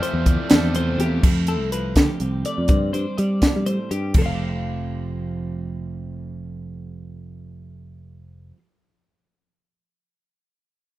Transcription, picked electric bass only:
0.14 0.36 E2 medium
0.51 0.96 E2 medium
0.98 1.21 E2 medium
1.23 1.60 F2 medium
1.60 1.93 C2 medium
1.96 2.07 D3 medium
2.20 2.42 C2 medium
2.58 2.69 F2 medium
2.69 2.91 G2 loud
2.94 3.05 G2 medium
3.19 3.40 G3 medium
3.56 3.77 G3 medium
3.91 4.13 G2 medium
4.15 8.51 F1 medium

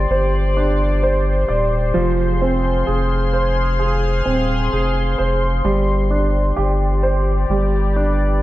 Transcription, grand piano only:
0.00 1.90 G3 medium
0.00 0.53 D4 medium
0.00 0.11 C5 medium
0.00 1.45 D5 medium
0.11 1.02 C5 medium
0.57 1.91 D4 medium
1.03 1.92 C5 medium
1.48 1.94 D5 medium
1.94 5.60 F3 medium
2.42 4.22 C4 medium
2.87 3.78 G#4 medium
3.33 5.14 C5 medium
3.79 4.71 G#4 medium
4.25 5.60 C4 medium
4.73 5.62 G#4 medium
5.18 5.63 C5 medium
5.65 7.45 G3 medium
6.11 7.45 D4 medium
6.57 7.46 G4 medium
7.03 7.48 C5 medium
7.50 8.43 G3 medium
7.96 8.43 D4 medium

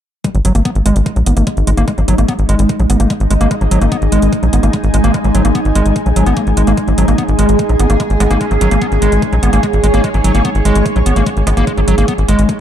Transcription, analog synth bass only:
0.35 0.41 G#1 medium
0.45 0.51 G#1 loud
0.55 0.61 G#1 medium
0.75 0.82 G#1 medium
0.86 0.92 G#1 loud
0.96 1.02 G#1 medium
1.16 1.23 A#1 medium
1.26 1.33 G#1 loud
1.37 1.43 G#1 medium
1.57 1.63 G#1 medium
1.67 1.74 G#1 loud
1.77 1.84 G#1 medium
1.98 2.04 G#1 medium
2.08 2.14 G#1 loud
2.18 2.25 G#1 medium
2.39 2.45 G#1 medium
2.49 2.55 G#1 loud
2.59 2.65 G#1 medium
2.80 2.86 A#1 medium
2.90 2.96 G#1 loud
3.00 3.06 G#1 medium
3.20 3.27 G#1 medium
3.31 3.37 G#1 loud
3.41 3.47 G#1 medium
3.61 3.68 G#1 medium
3.71 3.78 G#1 loud
3.82 3.88 G#1 medium
4.02 4.08 G#1 medium
4.12 4.19 G#1 loud
4.22 4.29 G#1 medium
4.43 4.49 A#1 medium
4.53 4.59 G#1 medium
4.63 4.70 G#1 medium
4.84 4.90 G#1 medium
4.94 5.00 G#1 loud
5.04 5.10 G#1 medium
5.24 5.31 G#1 medium
5.35 5.41 G#1 loud
5.45 5.51 G#1 medium
5.65 5.72 G#1 medium
5.75 5.82 G#1 loud
5.86 5.92 G#1 medium
6.06 6.12 A#1 medium
6.16 6.23 G#1 medium
6.26 6.33 G#1 medium
6.47 6.53 G#1 medium
6.57 6.63 G#1 loud
6.67 6.74 G#1 medium
6.88 6.94 G#1 medium
6.98 7.04 G#1 loud
7.08 7.15 G#1 medium
7.29 7.35 G#1 medium
7.39 7.45 G#1 loud
7.49 7.55 G#1 medium
7.69 7.76 A#1 medium
7.80 7.86 G#1 loud
7.90 7.96 G#1 medium
8.10 8.17 G#1 medium
8.20 8.27 G#1 loud
8.31 8.37 G#1 medium
8.51 8.57 G#1 medium
8.61 8.68 G#1 loud
8.71 8.78 G#1 medium
8.92 8.98 G#1 medium
9.02 9.08 G#1 loud
9.12 9.19 G#1 medium
9.33 9.39 A#1 medium
9.43 9.49 G#1 loud
9.53 9.59 G#1 medium
9.73 9.80 G#1 medium
9.84 9.90 G#1 loud
9.94 10.00 G#1 medium
10.14 10.21 G#1 medium
10.24 10.31 G#1 loud
10.35 10.41 G#1 medium
10.55 10.61 G#1 medium
10.65 10.72 G#1 loud
10.75 10.82 G#1 medium
10.96 11.02 A#1 medium
11.06 11.12 G#1 loud
11.16 11.23 G#1 medium
11.37 11.43 G#1 medium
11.47 11.53 G#1 loud
11.57 11.63 G#1 medium
11.78 11.84 G#1 medium
11.88 11.94 G#1 loud
11.98 12.04 G#1 medium
12.18 12.25 G#1 medium
12.29 12.35 G#1 loud
12.39 12.45 G#1 medium

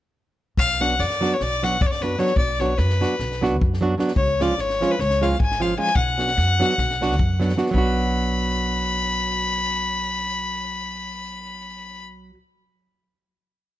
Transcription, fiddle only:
0.59 0.83 F5 loud
0.81 1.01 F#5 medium
1.00 1.35 D5 loud
1.34 1.44 C#5 medium
1.42 1.65 D5 medium
1.64 1.83 F#5 medium
1.82 1.88 D5 medium
1.86 1.92 C#5 medium
1.91 2.03 D5 medium
2.02 2.21 B4 medium
2.19 2.36 C#5 medium
2.38 2.61 D5 medium
2.60 2.80 C#5 medium
2.78 3.43 B4 medium
4.17 4.43 C#5 medium
4.41 4.62 D5 medium
4.60 4.93 C#5 medium
4.92 5.01 B4 medium
5.00 5.24 C#5 loud
5.22 5.40 F5 medium
5.41 5.63 G#5 medium
5.62 5.78 F5 medium
5.79 5.97 G#5 loud
5.95 7.57 F#5 loud
7.75 12.03 B5 medium

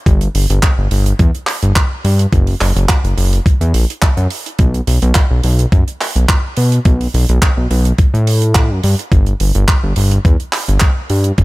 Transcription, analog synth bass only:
0.06 0.28 G1 loud
0.35 0.46 G1 medium
0.50 0.60 G1 loud
0.78 0.88 G1 medium
0.91 1.13 G1 loud
1.19 1.31 E2 medium
1.63 1.73 G1 medium
2.04 2.26 G2 medium
2.33 2.55 F#1 loud
2.61 2.72 F#1 loud
2.76 2.86 F#1 loud
3.04 3.14 F#1 medium
3.17 3.40 F#1 loud
3.61 3.73 E2 loud
3.74 3.85 A#1 medium
4.17 4.27 F#2 medium
4.59 4.81 B1 loud
4.87 4.99 B1 medium
5.02 5.12 B1 loud
5.31 5.41 B1 medium
5.44 5.66 B1 loud
5.72 5.84 F#2 medium
6.16 6.26 B1 medium
6.57 6.79 B2 medium
6.85 7.07 B1 loud
7.14 7.25 B1 loud
7.29 7.39 B1 loud
7.57 7.67 B1 medium
7.70 7.92 B1 medium
8.14 8.72 A2 loud
8.70 8.81 F#2 medium
8.84 8.95 G2 medium
9.12 9.34 G1 loud
9.40 9.52 G1 medium
9.55 9.65 G1 loud
9.83 9.94 G1 medium
9.97 10.19 G1 loud
10.25 10.36 E2 medium
10.68 10.79 G1 medium
11.10 11.32 G2 medium
11.38 11.44 F#1 loud

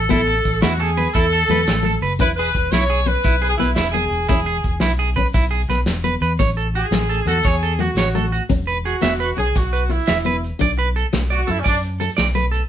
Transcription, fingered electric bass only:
0.11 0.39 A1 medium
0.46 0.60 A1 medium
0.63 1.05 E2 loud
1.15 1.43 E2 loud
1.49 1.63 E2 medium
1.68 1.96 A1 loud
2.02 2.20 F#1 medium
2.20 2.48 E1 loud
2.55 2.69 E1 medium
2.72 3.14 B1 loud
3.25 3.53 B1 loud
3.61 3.75 B1 medium
3.77 4.05 E1 loud
4.11 4.25 E1 medium
4.30 4.58 E1 loud
4.64 4.79 E1 medium
4.80 5.23 B1 loud
5.35 5.63 B1 loud
5.69 5.83 B1 medium
5.86 6.15 E1 loud
6.21 6.36 E2 loud
6.40 6.82 A1 loud
6.91 7.20 A1 medium
7.26 7.40 E2 medium
7.45 7.87 E2 medium
7.95 8.38 A1 loud
8.50 8.93 E1 loud
9.02 9.31 E1 medium
9.38 9.52 B1 medium
9.55 9.98 B1 medium
10.09 10.51 E1 loud
10.61 11.03 B1 loud
11.13 11.41 B1 medium
11.49 11.63 F#2 medium
11.66 12.08 F#2 medium
12.18 12.60 B1 loud

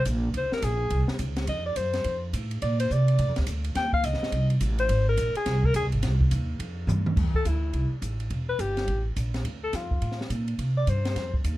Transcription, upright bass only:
0.06 0.33 A#1 medium
0.34 0.50 C#2 medium
0.52 muted upright bass stroke soft
0.62 0.90 A#1 medium
0.90 1.07 C2 medium
1.08 muted upright bass stroke soft
1.19 1.47 C#2 medium
1.47 1.75 F2 medium
1.76 2.04 F#2 medium
2.05 2.32 F2 medium
2.33 2.61 A2 medium
2.62 2.89 A#2 medium
2.90 3.18 C3 medium
3.19 3.28 A2 medium
3.28 3.37 F2 medium
3.38 3.46 D2 medium
3.47 3.75 D2 medium
3.75 4.03 D#2 medium
4.04 4.20 C#2 medium
4.21 muted upright bass stroke soft
4.32 4.60 C2 medium
4.61 4.88 A1 medium
4.89 5.17 G#1 medium
5.17 5.34 A#1 medium
5.46 5.74 C2 medium
5.75 5.83 D2 medium
5.83 5.92 C2 medium
5.93 6.02 G#1 medium
6.03 6.30 C2 medium
6.32 6.59 D#2 loud
6.59 6.87 F2 medium
6.87 7.15 G2 medium
7.16 7.33 F2 medium
7.34 muted upright bass stroke soft
7.45 7.72 D2 medium
7.73 7.90 C2 medium
7.91 muted upright bass stroke soft
8.02 8.30 A1 medium
8.31 8.58 E1 medium
8.59 8.87 G1 medium
8.88 9.15 A1 medium
9.16 9.44 A#1 medium
9.44 9.72 D2 medium
9.73 10.01 F2 medium
10.02 10.29 A2 medium
10.30 10.58 A#2 medium
10.58 10.86 C3 medium
10.87 11.15 G2 medium
11.16 11.43 F2 medium
11.44 11.58 D#2 medium

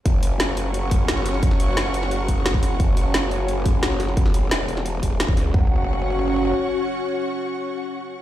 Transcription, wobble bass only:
0.06 1.41 F#1 loud
1.43 2.79 F#1 medium
2.80 4.16 F#1 loud
4.17 4.50 F#1 loud
4.51 5.01 E1 medium
5.03 5.36 E1 loud
5.37 5.53 C#2 loud
5.54 6.53 F#1 loud

